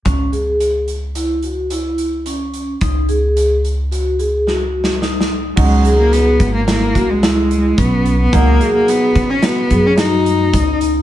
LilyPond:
<<
  \new Staff \with { instrumentName = "Vibraphone" } { \time 5/4 \key cis \dorian \tempo 4 = 109 cis'8 gis'4 r8 e'8 fis'8 e'4 cis'4 | dis'8 gis'4 r8 fis'8 gis'8 fis'4 dis'4 | cis'8 gis'4 r8 e'8 fis'8 e'4 cis'4 | dis'8 gis'4 r8 fis'8 gis'8 fis'4 dis'4 | }
  \new Staff \with { instrumentName = "Cello" } { \time 5/4 \key cis \dorian r1 r4 | r1 r4 | gis8. ais16 b8. ais16 ais8. gis4~ gis16 b8. b16 | ais8. ais16 b8. cis'16 b8. cis'16 dis'4. r8 | }
  \new Staff \with { instrumentName = "Grand piano" } { \clef bass \time 5/4 \key cis \dorian r1 r4 | r1 r4 | <b, fis dis'>1~ <b, fis dis'>4 | <b, fis dis'>1~ <b, fis dis'>4 | }
  \new Staff \with { instrumentName = "Upright bass" } { \clef bass \time 5/4 \key cis \dorian cis,1~ cis,4 | cis,1~ cis,4 | cis,4. gis,,4 cis,4. b,,4 | cis,8 r4 cis4 fis,4. cis,4 | }
  \new DrumStaff \with { instrumentName = "Drums" } \drummode { \time 5/4 <hh bd>8 hh8 hh8 hh8 hh8 hh8 hh8 hh8 hh8 hh8 | <hh bd>8 hh8 hh8 hh8 hh8 hh8 \tuplet 3/2 { sn8 r8 sn8 sn8 sn8 r8 } | <cymc bd>8 hh8 <hh sn>8 <hh bd>8 <hh sn>8 <hh bd>8 <hh sn>8 hh8 <hh bd>8 hh8 | <hh bd>8 hh8 <hh sn>8 <hh bd>8 <hh sn>8 <hh bd>8 <hh sn>8 hh8 <hh bd>8 hh8 | }
>>